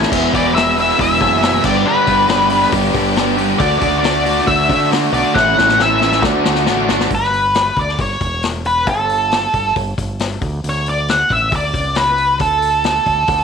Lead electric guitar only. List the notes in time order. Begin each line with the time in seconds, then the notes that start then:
0.35 D5
0.55 E5
0.80 E5
1.01 E5
1.65 D5
1.86 B4
3.59 D5
3.79 D5
3.99 D5
4.47 E5
5.13 D5
5.34 F#5
5.82 E5
7.15 B4
7.79 D5
8.01 C#5
8.67 B4
8.90 A4
10.69 C#5
10.89 D5
11.10 F#5
11.33 E5
11.56 D5
11.96 B4
12.41 A4